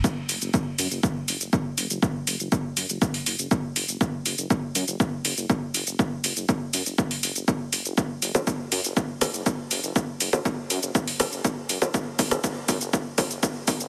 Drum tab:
HH |--o---o---o---o-|--o---o--oo---o-|--o---o---o---o-|--o---o--oo---o-|
SH |x-xxx-xxx-xxx-xx|x-xxx-xxx-xxx-xx|x-xxx-xxx-xxx-xx|x-xxx-xxx-xxx-xx|
CG |----------------|----------------|----------------|----------------|
BD |o---o---o---o---|o---o---o---o---|o---o---o---o---|o---o---o---o---|

HH |--o---o---o---o-|--o---o--oo---o-|--o---o---o---o-|
SH |x-xxx-xxx-xxx-xx|x-xxx-xxx-xxx-xx|x-xxx-xxx-xxx-xx|
CG |---O------O-----|---O------O----O|---O------O-----|
BD |o---o---o---o---|o---o---o---o---|o-o-o-o-o-o-o-o-|